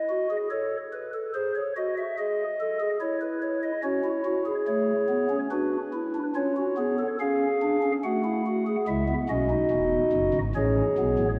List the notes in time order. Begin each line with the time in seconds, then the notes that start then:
Already playing: D#5
0.09 F#4
0.30 G#4
0.50 A4 C#5
0.93 B4
1.13 A4
1.34 G#4 C5
1.55 C#5
1.76 F#4 D#5
1.97 E5
2.18 G#4 D#5
2.60 A4
2.80 G#4
3.01 E4 C#5
3.21 B4
3.42 C#5
3.63 D#5
3.83 C#4 F#4 C#5
4.04 E4
4.24 E4 F#4
4.46 G#4
4.67 A3 C#5
5.09 B3
5.30 C#4
5.51 D4 F#4 B4
5.93 E4
6.15 D4
6.35 C#4 F4 C#5
6.57 F#4
6.77 B3 G#4
6.98 A4
7.20 C#4 G#4 F5
7.62 D4
7.83 C#4
8.04 A3 F#4 F#5
8.24 E4
8.46 F#4
8.66 G#4
8.88 C#2 C#3 G#3 E4 E5
9.09 B3
9.29 B1 B2 C#4 F#4 D#5
9.50 D#4
9.71 E1 E2
10.13 F#1 F#2
10.34 G#1 G#2
10.55 A1 A2 C#4 G#4 C#5
10.98 B1 B2 B3
11.19 A1 A2